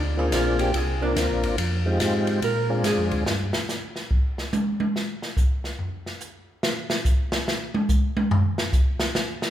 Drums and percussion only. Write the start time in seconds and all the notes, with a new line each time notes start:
0.32 snare, hi-hat pedal, ride
0.59 ride
0.74 ride
1.16 snare, hi-hat pedal, ride
1.43 ride
1.58 ride
2.00 snare, hi-hat pedal, ride
2.27 ride
2.42 ride
2.84 snare, hi-hat pedal, ride
3.11 ride
3.26 snare
3.53 snare
3.69 snare, hi-hat pedal
3.96 snare
4.11 kick
4.38 snare
4.53 hi-hat pedal, high tom
4.80 high tom
4.96 snare
5.22 snare
5.37 kick, hi-hat pedal
5.64 snare
5.79 floor tom
6.06 snare
6.21 hi-hat pedal
6.63 snare
6.90 snare
7.05 kick, hi-hat pedal
7.32 snare
7.48 snare
7.74 high tom
7.89 kick, hi-hat pedal
8.17 high tom
8.31 floor tom
8.58 snare
8.73 kick, hi-hat pedal
9.00 snare
9.15 snare
9.42 snare